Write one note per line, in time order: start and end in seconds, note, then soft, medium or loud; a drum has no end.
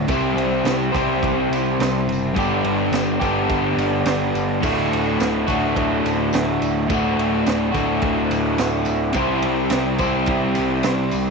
0.08 0.34 C2 loud
0.08 0.91 C3 medium
0.08 0.96 G3 loud
0.08 0.92 C4 loud
0.08 0.93 E4 loud
0.08 0.93 G4 loud
0.08 kick loud
0.08 ride loud
0.08 tambourine medium
0.13 0.91 C5 loud
0.34 0.61 C2 medium
0.34 ride medium
0.34 tambourine soft
0.64 0.90 C2 loud
0.64 snare loud
0.64 ride loud
0.64 tambourine medium
0.92 1.20 C2 medium
0.92 2.34 C4 medium
0.92 2.34 E4 medium
0.92 2.33 G4 medium
0.92 2.33 C5 loud
0.92 kick loud
0.92 ride medium
0.96 2.34 C3 medium
0.96 2.35 G3 medium
0.96 tambourine medium
1.23 1.48 C2 loud
1.23 kick loud
1.23 ride medium
1.23 tambourine soft
1.49 1.75 C2 medium
1.49 ride medium
1.54 tambourine medium
1.79 2.05 C2 medium
1.79 snare loud
1.79 ride loud
1.79 tambourine medium
2.07 2.33 F#1 medium
2.07 ride medium
2.12 tambourine medium
2.35 2.62 G1 medium
2.35 3.18 G2 loud
2.35 3.18 D3 loud
2.35 3.19 G3 loud
2.35 3.19 B3 loud
2.35 3.20 D4 loud
2.35 kick loud
2.35 ride loud
2.39 3.18 G4 loud
2.39 tambourine medium
2.64 2.90 G1 medium
2.64 ride medium
2.92 3.18 G1 medium
2.92 snare loud
2.92 ride loud
2.92 tambourine medium
3.19 3.47 G1 medium
3.19 4.61 G3 medium
3.19 4.61 B3 medium
3.19 6.71 D4 medium
3.19 4.60 G4 medium
3.19 kick medium
3.19 ride medium
3.19 tambourine medium
3.23 4.60 G2 medium
3.23 4.62 D3 medium
3.49 3.75 G1 loud
3.49 kick loud
3.49 ride loud
3.49 tambourine soft
3.77 4.03 G1 medium
3.77 ride medium
3.77 tambourine medium
4.05 4.31 G1 medium
4.05 snare loud
4.05 ride loud
4.05 tambourine medium
4.35 4.60 G1 medium
4.35 ride medium
4.35 tambourine medium
4.60 4.88 D1 medium
4.60 5.51 D2 medium
4.60 5.45 A2 loud
4.60 5.49 D3 loud
4.60 5.48 A3 loud
4.60 kick loud
4.60 crash loud
4.60 tambourine medium
4.65 5.46 F#4 loud
4.92 5.17 D1 medium
4.92 ride medium
4.92 tambourine soft
5.19 5.45 D1 medium
5.19 snare loud
5.19 ride loud
5.19 tambourine medium
5.47 5.73 D1 medium
5.47 6.88 A2 medium
5.47 6.88 D3 medium
5.47 6.88 A3 medium
5.47 6.87 F#4 medium
5.47 kick loud
5.47 ride medium
5.47 tambourine medium
5.52 6.87 D2 medium
5.76 6.02 D1 medium
5.76 kick loud
5.76 ride loud
5.76 tambourine soft
6.04 6.30 D1 medium
6.04 ride medium
6.04 tambourine medium
6.33 6.59 D1 medium
6.33 snare loud
6.33 ride loud
6.33 tambourine medium
6.61 6.87 D1 medium
6.61 ride medium
6.61 tambourine medium
6.88 7.15 D1 loud
6.88 7.72 D2 medium
6.88 7.72 A2 loud
6.88 7.73 D3 loud
6.88 7.72 A3 loud
6.88 kick loud
6.88 ride medium
6.88 tambourine medium
6.93 7.71 F#4 loud
7.17 7.43 D1 medium
7.17 ride medium
7.17 tambourine soft
7.46 7.72 D1 medium
7.46 snare loud
7.46 ride loud
7.46 tambourine medium
7.72 8.00 D1 medium
7.72 9.14 A2 medium
7.72 9.14 D3 medium
7.72 9.14 A3 medium
7.72 9.13 F#4 medium
7.72 kick loud
7.72 ride medium
7.72 tambourine medium
7.77 9.12 D2 medium
8.02 8.28 D1 loud
8.02 kick loud
8.02 ride loud
8.02 tambourine soft
8.30 8.56 D1 medium
8.30 ride medium
8.30 tambourine medium
8.58 8.85 D1 loud
8.58 snare loud
8.58 ride loud
8.58 tambourine medium
8.85 9.13 D1 loud
8.85 ride medium
8.85 tambourine medium
9.13 9.41 C2 loud
9.13 9.97 C3 loud
9.13 9.98 G3 loud
9.13 9.98 C4 loud
9.13 9.99 E4 loud
9.13 kick loud
9.13 ride loud
9.13 tambourine medium
9.17 9.99 G4 loud
9.17 9.98 C5 loud
9.42 9.69 C2 medium
9.42 ride medium
9.42 tambourine soft
9.70 9.97 C2 loud
9.70 snare loud
9.70 ride loud
9.70 tambourine loud
9.98 10.26 C2 medium
9.98 11.30 E4 medium
9.98 11.30 G4 medium
9.98 11.30 C5 medium
9.98 kick medium
9.98 ride medium
9.98 tambourine medium
10.03 11.30 C3 medium
10.03 11.30 G3 medium
10.03 11.30 C4 medium
10.26 10.54 C2 loud
10.26 kick loud
10.26 ride loud
10.26 tambourine soft
10.55 10.83 C2 medium
10.55 ride medium
10.55 tambourine medium
10.83 11.11 C2 medium
10.83 snare loud
10.83 ride loud
10.83 tambourine loud
11.11 11.30 C2 medium
11.11 ride medium
11.11 tambourine medium